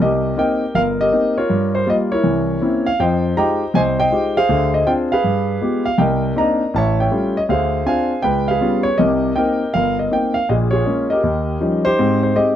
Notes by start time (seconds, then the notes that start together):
0.00 C2 G4 A#4 D#5
0.37 A#3 C4 D#4 A#4 D#5 G5
0.75 G1 A#4 F5
1.01 G4 A#4 D#5
1.12 A#3 C4 D#4
1.38 F4 A#4 C#5
1.50 G2
1.75 C5
1.86 G3 A#3 F4 D#5
2.12 E4 A#4 C#5
2.23 C2 E3
2.61 A#3 C4 C#4 E4
2.86 F5
2.99 F2 F3 C5 D#5 G5
3.37 G#3 D#4 F4 G4 D#5 G5 A#5
3.74 C2 C5 D#5 G#5
4.00 C5 D#5 G5
4.12 G#3 D#4 F4 G4
4.37 G#4 C5 F5
4.49 D2 D3
4.74 D#5
4.87 C4 D4 F4 G5
5.12 G#4 B4 F5
5.24 G2
5.61 G#3 B3 F4 G4
5.85 F5
5.98 C2 A#4 D#5 G5
6.36 A#3 C4 D4 D#4 D5 D#5 A#5
6.74 A1 C#5 E5 A5
7.00 C#5 E5 G5
7.11 G3 A3 C#4 F4
7.37 D#5
7.49 D2 G#4 C5 F5
7.86 C4 D4 F4 C5 F5 G#5
8.22 C#2 B4 G5
8.48 G#4 B4 F5
8.61 G3 B3 C#4 F4
8.83 C#5
8.98 C2 C3 G4 A#4 D#5
9.36 A#3 C4 D#4 A#4 D#5 G5
9.74 G1 A#4 F5
9.99 D#5
10.11 A#3 C4 D#4 G5
10.34 F5
10.49 A#1 A#2 G#4 D#5
10.71 F4 G#4 C#5
10.86 G#3 A#3 C#4
11.10 G4 A#4 D#5
11.23 D#2
11.60 F3 G3 C#4 D#4
11.85 D#4 G4 C5
11.99 G#2 C4
12.23 C5
12.36 G#3 C4 G4 D#5